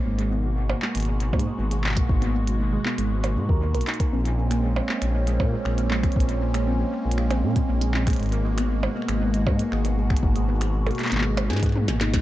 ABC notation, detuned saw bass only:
X:1
M:4/4
L:1/16
Q:1/4=118
K:Abdor
V:1 name="Detuned saw bass" clef=bass
A,,,4- A,,, z2 A,,,3 A,, z A,,,3 z | A,,,4- A,,, z2 A,,,3 A,, E,,2 C,, z2 | B,,,4- B,,, z2 B,,,3 B,, z B,,,3 z | B,,,4- B,,, z2 B,,,3 B,, z B,,,3 z |
A,,,4- A,,, z2 A,,,3 A,, z A,,,3 z | A,,,4- A,,, z2 A,,,3 A,,3 A,,,2 z |]